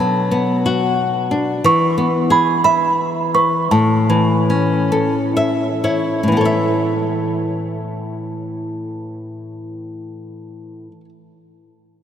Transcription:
Already playing: B2 A5
0.00 F#3
0.31 B3
0.66 F#4
1.31 D4
1.64 E3 C#6
1.98 B3
2.30 G#4 B5
2.64 E5 B5
3.34 B4 C#6
3.71 A2 A5
4.10 E3
4.50 C#4
4.92 A4
5.37 E5
5.84 E4 C#5
6.23 A2
6.28 E3
6.32 B3
6.37 A4
6.41 C#5
6.45 E5

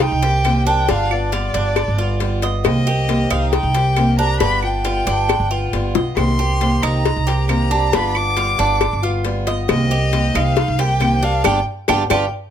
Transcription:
Already playing: D#4
0.00 G5, muted steel-string acoustic guitar stroke, cowbell
0.12 C2
0.22 A#3 C4 G4, cowbell
0.44 C3 D#3 A#3 C4 G4, cowbell, claves
0.66 A#3 C4 D4 G4 G5
0.88 G1 G3 B3 D4 F4 F5, cowbell
1.10 B3 F4 D5, claves
1.32 G3 B3 F4, cowbell
1.54 G1 D4, cowbell
1.76 muted steel-string acoustic guitar stroke, cowbell, claves
1.88 G1
1.98 B3 F4
2.20 G3 B3 F4, cowbell
2.42 B3 F4 D#5, cowbell
2.64 C2 C3 D#3 A#3 C4 G4 D#5, cowbell, claves
2.87 A#3 C4 G4
3.08 C3 D#3 A#3 C4 G4, cowbell
3.30 C2 D#4 F5, cowbell, claves
3.52 G5, muted steel-string acoustic guitar stroke, cowbell
3.63 C2
3.75 A#3 C4 G4, cowbell
3.96 C3 D#3 A#3 C4 G4, cowbell, claves
4.19 A#3 C4 D4 G4 A#5
4.40 G1 G3 B3 D4 F4 B5, cowbell
4.63 B3 F4 G5, claves
4.85 G3 B3 F4, cowbell
5.07 G1 D4, cowbell
5.29 muted steel-string acoustic guitar stroke, cowbell, claves
5.40 G1
5.51 B3 F4
5.73 G1 G3 B3 F4, cowbell
5.95 B1 B3 F4 D#5, cowbell, high bongo
6.16 C2 C3 D#3 A#3 C4 G4 C6, cowbell, claves
6.39 A#3 C4 G4
6.61 C3 D#3 A#3 C4 G4, cowbell
6.83 C2 D#4 A#5, cowbell, claves
7.05 muted steel-string acoustic guitar stroke, cowbell
7.16 C2
7.27 A#3 C4 G4, cowbell
7.48 C3 D#3 A#3 C4 G4 A#5, cowbell, claves
7.70 A#3 C4 D4 G4
7.92 G1 G3 B3 D4 F4 B5, cowbell
8.15 B3 F4 D6, claves
8.36 G3 B3 F4, cowbell
8.59 G1 D4, cowbell
8.80 muted steel-string acoustic guitar stroke, cowbell, claves
8.93 G1
9.02 B3 F4
9.24 G3 B3 F4, cowbell
9.47 B3 F4 D#5, cowbell
9.68 C2 C3 D#3 A#3 C4 G4 D#5, cowbell, claves
9.90 A#3 C4 G4
10.12 C3 D#3 A#3 C4 G4, cowbell
10.35 C2 D#4 F5, cowbell, claves
10.56 muted steel-string acoustic guitar stroke, cowbell
10.68 C2
10.78 A#3 C4 G4 G5, cowbell
11.00 C3 D#3 A#3 C4 G4, cowbell, claves
11.23 A#3 C4 D4 G4 F5
11.44 G1 G3 B3 D4 F4 G4 G5, cowbell, claves
11.88 G1 G3 B3 D4 F4 G4 G5, cowbell, claves
12.10 G1 G3 B3 D4 F4 G4 G5, cowbell, claves

